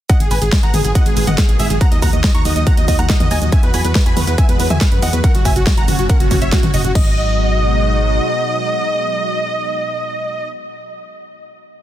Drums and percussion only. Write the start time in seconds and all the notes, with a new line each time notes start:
0.10 kick, closed hi-hat, shaker
0.20 closed hi-hat
0.31 open hi-hat, shaker
0.42 closed hi-hat, shaker
0.52 kick, snare, closed hi-hat, shaker
0.63 closed hi-hat
0.74 open hi-hat, mid tom, shaker
0.85 closed hi-hat, shaker
0.95 kick, closed hi-hat, shaker
1.06 closed hi-hat
1.17 open hi-hat, shaker
1.27 closed hi-hat, mid tom, shaker
1.38 kick, snare, closed hi-hat, shaker
1.49 closed hi-hat
1.60 open hi-hat, shaker
1.70 closed hi-hat, shaker
1.81 kick, closed hi-hat, shaker
1.92 closed hi-hat
2.02 kick, open hi-hat, shaker
2.13 closed hi-hat, shaker
2.24 kick, snare, closed hi-hat, shaker
2.35 closed hi-hat
2.45 open hi-hat, shaker
2.56 closed hi-hat, shaker
2.67 kick, closed hi-hat, shaker
2.77 closed hi-hat
2.88 kick, open hi-hat, shaker
2.99 closed hi-hat, shaker
3.10 kick, snare, closed hi-hat, shaker
3.20 closed hi-hat, mid tom
3.31 open hi-hat, shaker
3.42 closed hi-hat, shaker
3.52 kick, closed hi-hat, shaker
3.63 closed hi-hat
3.74 open hi-hat, shaker
3.85 closed hi-hat, shaker
3.95 kick, snare, closed hi-hat, shaker
4.06 closed hi-hat
4.17 open hi-hat, mid tom, shaker
4.27 closed hi-hat, shaker
4.38 kick, closed hi-hat, shaker
4.49 closed hi-hat
4.60 open hi-hat, shaker
4.70 mid tom, shaker
4.81 kick, snare, closed hi-hat, shaker
4.92 closed hi-hat
5.02 open hi-hat, shaker
5.13 closed hi-hat, shaker
5.24 kick, closed hi-hat, shaker
5.35 closed hi-hat
5.45 kick, open hi-hat, shaker
5.56 closed hi-hat, shaker
5.67 kick, snare, closed hi-hat, shaker
5.77 closed hi-hat
5.88 open hi-hat, mid tom, shaker
5.99 closed hi-hat, shaker
6.10 kick, closed hi-hat, shaker
6.20 closed hi-hat
6.31 kick, open hi-hat, mid tom, shaker
6.42 closed hi-hat, shaker
6.52 kick, snare, closed hi-hat, shaker
6.63 closed hi-hat, mid tom
6.74 open hi-hat, shaker
6.85 closed hi-hat, shaker
6.95 kick, crash